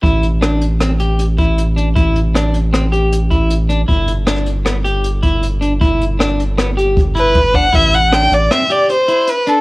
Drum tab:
HH |xxxxxxxxxx|xxxxxxxxxx|xxxxxxxxxx|xxxxxxxxxx|
SD |--r-r-----|--r-r-----|--r-r-----|--r-r-----|
BD |o------o--|o------o--|o------o--|o-----o-oo|

HH |xxxxxxxxxx|
SD |--r-r-----|
BD |o---------|